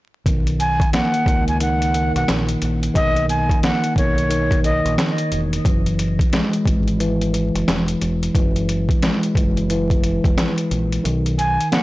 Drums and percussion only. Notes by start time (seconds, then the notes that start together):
0.26 kick, closed hi-hat
0.47 closed hi-hat
0.60 closed hi-hat
0.80 kick, closed hi-hat
0.93 snare, closed hi-hat
1.14 closed hi-hat
1.26 kick, closed hi-hat
1.48 closed hi-hat
1.60 closed hi-hat
1.82 closed hi-hat
1.94 closed hi-hat
2.16 closed hi-hat
2.28 snare, closed hi-hat
2.49 closed hi-hat
2.62 closed hi-hat
2.83 closed hi-hat
2.95 kick, closed hi-hat
3.16 closed hi-hat
3.29 closed hi-hat
3.49 kick, closed hi-hat
3.63 snare, closed hi-hat
3.84 closed hi-hat
3.96 kick, closed hi-hat
4.18 closed hi-hat
4.31 closed hi-hat
4.51 kick, closed hi-hat
4.64 closed hi-hat
4.86 closed hi-hat
4.98 snare, closed hi-hat
5.18 closed hi-hat
5.32 closed hi-hat
5.53 closed hi-hat
5.65 kick, closed hi-hat
5.86 closed hi-hat
5.99 closed hi-hat
6.19 kick, closed hi-hat
6.33 snare, closed hi-hat
6.53 closed hi-hat
6.66 kick, closed hi-hat
6.88 closed hi-hat
7.00 closed hi-hat
7.21 closed hi-hat
7.34 closed hi-hat
7.55 closed hi-hat
7.68 snare, closed hi-hat
7.88 closed hi-hat
8.01 closed hi-hat
8.23 closed hi-hat
8.35 kick, closed hi-hat
8.56 closed hi-hat
8.69 closed hi-hat
8.89 kick, closed hi-hat
9.02 snare, closed hi-hat
9.23 closed hi-hat
9.35 kick, closed hi-hat
9.57 closed hi-hat
9.70 closed hi-hat
9.90 kick, closed hi-hat
10.04 closed hi-hat
10.24 kick, closed hi-hat
10.38 snare, closed hi-hat
10.58 closed hi-hat
10.71 closed hi-hat
10.92 closed hi-hat
11.05 closed hi-hat
11.26 closed hi-hat
11.39 closed hi-hat
11.60 closed hi-hat
11.72 snare, closed hi-hat